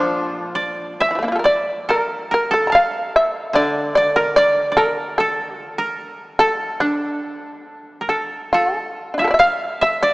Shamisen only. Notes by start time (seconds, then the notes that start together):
Already playing: F4
1.01 E5
1.11 E3
1.15 F3 A3
1.23 A#3 D4
1.28 E4 F4
1.35 A4 A#4
1.45 D5
1.90 A#4
2.34 A#4
2.54 A4
2.67 A5 A#5
2.75 F5
3.16 E5
3.55 D5
3.95 D5
4.16 A#4
4.36 D5
4.77 A#4
5.18 A4
6.39 A4
6.80 D4
8.09 A4
8.53 F4
8.80 A4
9.14 D4 E4
9.21 F4 A4
9.28 A#4 D5
9.34 E5
9.40 F5
9.83 E5
10.03 D5